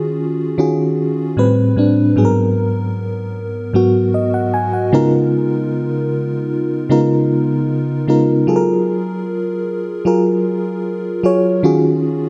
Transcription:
Already playing: D#3 C#4 F4 F#4 G#4
0.58 D#3 C#4 F4 F#4 G#4
1.37 A2 G3 C4 B4
1.76 A2 G3 C4 D4
2.16 G#2 F#3 B3 G#4
2.25 A#4
3.73 G#2 F#3 B3 F#4
4.14 D#5
4.34 F#5
4.54 G#5
4.73 F#5
4.92 C#3 G#3 B3 D#4 F4 A#4
6.89 C#3 G#3 B3 D#4 F4 A#4
8.08 C#3 G#3 B3 D#4 F4 A#4
8.47 F#3 F4 G#4 A4
8.56 A#4
10.05 F#3 F4 G#4 A#4
11.23 F#3 F4 G#4 C#5
11.63 D#3 C#4 F4 F#4 G#4

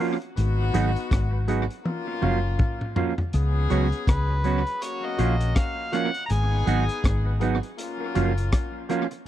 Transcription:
0.00 F3 A#3 C#4 F4 F#4 A#4 F5, open hi-hat
0.22 closed hi-hat
0.37 G#1 B3 D#4 F#4, closed hi-hat
0.74 G#1 F#3 B3 D#4 F#4 G#4 B4 F#5, closed hi-hat
0.96 closed hi-hat
1.11 G#1, kick, cross-stick, closed hi-hat
1.33 B4 F#5
1.48 F#3 B3 D#4 F#4 G#4 B4 F#5, closed hi-hat
1.70 closed hi-hat
1.85 A#3 C#4 F4, high tom
2.07 A#4 F5, muted clean electric guitar stroke
2.22 F#1 F3 A#3 C#4 F4 F#4 A#4 F5, mid tom
2.59 kick, mid tom
2.81 mid tom
2.96 F3 A#3 C#4 F4 F#4 A#4 F5, floor tom
3.18 muted clean electric guitar stroke, floor tom
3.33 C#2 B3 C#4 G#4, closed hi-hat
3.70 C#2 F#3 B3 C#4 F#4 B4 C#5, closed hi-hat
3.92 closed hi-hat
4.07 C#2 B4, kick, cross-stick, closed hi-hat
4.30 B4 C#5
4.44 F#3 B3 C#4 F#4 B4 C#5, closed hi-hat
4.67 closed hi-hat
4.82 A#3 C#4 F#4 C#5, closed hi-hat
5.04 A#4 D#5 F5
5.18 A#1 F3 A#3 C#4 F4 F#4 A#4 F5, closed hi-hat
5.40 closed hi-hat
5.56 F5, kick, cross-stick, closed hi-hat
5.92 F3 A#3 C#4 F4 F#4 A#4 F5 F#5, cross-stick, closed hi-hat
6.14 closed hi-hat
6.26 B3 D#4 G#4 A#5, closed hi-hat
6.30 G#1 G#5
6.66 G#1 F#3 B3 D#4 F#4 G#4 B4 F#5, closed hi-hat
6.89 closed hi-hat
7.04 G#1, kick, cross-stick, closed hi-hat
7.26 B4 F#5
7.40 F#3 B3 D#4 F#4 G#4 B4 F#5, closed hi-hat
7.63 closed hi-hat
7.77 A#3 C#4 F4, closed hi-hat
8.00 A#4 F5, muted clean electric guitar stroke
8.15 F#1 F3 A#3 C#4 F4 F#4 A#4 F5, closed hi-hat
8.37 closed hi-hat
8.52 kick, cross-stick, closed hi-hat
8.89 F3 A#3 C#4 F4 F#4 A#4 F5, cross-stick, closed hi-hat
9.11 muted clean electric guitar stroke, closed hi-hat

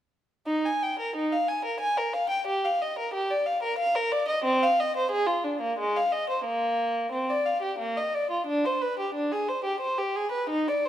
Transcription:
0.46 D#4
0.65 G#5
0.83 G5
0.99 A#4
1.16 D#4
1.32 F5
1.48 G#5
1.65 A#4
1.80 G#5
1.97 A#4
2.13 F5
2.29 G5
2.47 G4
2.65 F5
2.82 D#5
2.99 A#4
3.14 G4
3.30 D5
3.46 F5
3.63 A#4
3.78 F5
3.95 A#4
4.12 D5
4.28 D#5
4.44 C4
4.63 F5
4.80 D#5
4.96 C5
5.11 G#4
5.27 F4
5.44 D4
5.61 A#3
5.79 G#3
5.97 F5
6.12 D#5
6.30 C5
6.45 A#3
7.12 C4
7.29 D5
7.46 F5
7.62 G4
7.79 A#3
7.97 D#5
8.14 D5
8.31 F4
8.47 D4
8.65 C5
8.81 B4
8.99 G4
9.15 D4
9.32 G#4
9.49 C5
9.64 G4
9.80 C5
9.98 G4
10.16 G#4
10.32 B4
10.49 D#4
10.68 D5
10.85 C5

